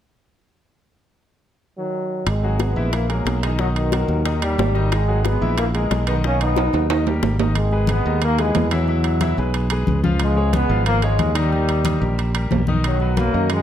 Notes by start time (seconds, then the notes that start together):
1.77 D#3 F#3
2.27 G#1 D#3 G#3, high bongo, high timbale
2.43 F#3 F#4 G#4
2.60 G#3 B3, high bongo, high timbale
2.76 A#1 E3 E4 E5
2.93 E3 A#3, high bongo, high timbale
3.09 F#3 G#3 A#3 G#4 A#4, high timbale
3.25 B1, high bongo, low bongo, high timbale
3.42 D#3 E3 G#3 D#4 D#5, high timbale
3.58 D#3 F#3 D#4 D#5, high bongo
3.75 B2 D#3, high timbale
3.92 F#3 F#4 A#4, high bongo, high timbale
4.08 D#2, high bongo
4.25 D#3 D#4 D#5, high bongo, high timbale
4.41 D#3 G3 G4 A#4, high bongo, high timbale
4.58 G#1, high bongo, low bongo, low timbale
4.75 D#3 D#4 D#5, high bongo
4.92 D#3 G#3, high bongo, high timbale
5.08 F#3 F#4 G#4
5.24 G#3 B3, high bongo, high timbale
5.41 A#1 E3 E4 E5
5.58 E3 A#3, high bongo, high timbale
5.75 E3 G#3 G#4 A#4, high timbale
5.91 B1, high bongo, low bongo, high timbale
6.07 D#3 G#3 B3 D#4 D#5, high timbale
6.24 D#3 A#3 C#4 D#4 D#5, high bongo
6.41 B3 D#4, high timbale
6.56 F#3 F#4 A#4, high bongo, high timbale
6.73 D#2, high bongo, high timbale
6.90 D#3 D#4 D#5, high bongo, high timbale
7.06 G3 G4 A#4, high bongo, low timbale
7.23 G#1, high bongo, low bongo, low timbale
7.39 D#3 D#4 D#5, high bongo, low timbale
7.55 D#3 G#3, high conga, high timbale
7.71 G#3 G#4 B4, high conga
7.87 G#3 B3 G#4 B4, high conga, high timbale
8.06 D#2 D#3 D#4 D#5
8.21 D#3 A#3, high conga, high timbale
8.38 E3 G#3 G#4 B4, high conga, high timbale
8.55 E2, high conga, high timbale, low timbale
8.71 B2 E3 F#3 E4 E5, high timbale
8.88 E3 E4 E5, high conga
9.04 high conga, high timbale
9.21 E3 E4 E5, high conga, high timbale
9.38 B1 G#3 G#4 B4, high conga
9.54 high conga, high timbale
9.70 G#3 G#4 B4, high conga, high timbale
9.87 C#2, high conga
10.03 F3 F4 F5, high conga
10.20 F3 G#3, high conga, high timbale
10.36 G#3 G#4 C#5, high conga
10.53 G#3 B3 G#4 C#5, high conga, high timbale
10.69 G#1 F3 F4 F5
10.85 F3 A#3, high conga, high timbale
11.02 F3 G#3 G#4 C#5, high conga, high timbale
11.19 D#2, high conga, high timbale
11.35 D#3 G3 D#4 D#5, high timbale
11.52 D#3 D#4 D#5, high conga
11.68 high conga, high timbale
11.85 D#3 D#4 D#5, high conga, high timbale
12.01 A#1 G3 G4 A#4, high conga
12.18 high conga, high timbale
12.34 G3 G4 A#4, high conga, high timbale
12.51 B1, high conga, low timbale
12.67 D#3 D#4 D#5, high conga
12.84 D#3 F#3, high timbale
13.00 F#3 F#4 B4, high conga
13.17 F#3 A#3 F#4 B4, high conga, high timbale
13.33 F#2 D#3 D#4 D#5
13.50 D#3 G#3, high conga, high timbale